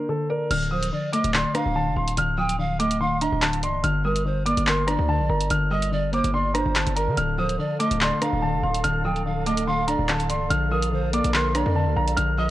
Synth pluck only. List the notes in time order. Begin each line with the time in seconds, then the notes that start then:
Already playing: A#3 D4
0.09 D3
0.30 D5
0.51 D3
0.72 F3
0.92 D3
1.13 A3
1.34 D3
1.55 D4
1.75 D3
1.96 F5
2.17 D3
2.38 F3
2.59 D3
2.80 A3
3.01 D3
3.21 D4
3.42 D3
3.63 D5
3.84 D3
4.05 G3
4.26 D3
4.46 A#3
4.67 D3
4.88 D4
5.09 D3
5.30 A#4
5.50 D3
5.71 G3
5.92 D3
6.13 A#3
6.34 D3
6.55 D4
6.75 D3
6.96 D5
7.17 D3
7.38 F3
7.59 D3
7.80 A3
8.01 D3
8.21 D4
8.42 D3
8.63 F5
8.84 D3
9.05 F3
9.26 D3
9.47 A3
9.67 D3
9.88 D4
10.09 D3
10.30 D5
10.51 D3
10.71 F3
10.92 D3
11.13 A#3
11.34 D3
11.55 D4
11.75 D3
11.96 F5
12.17 D3
12.38 F3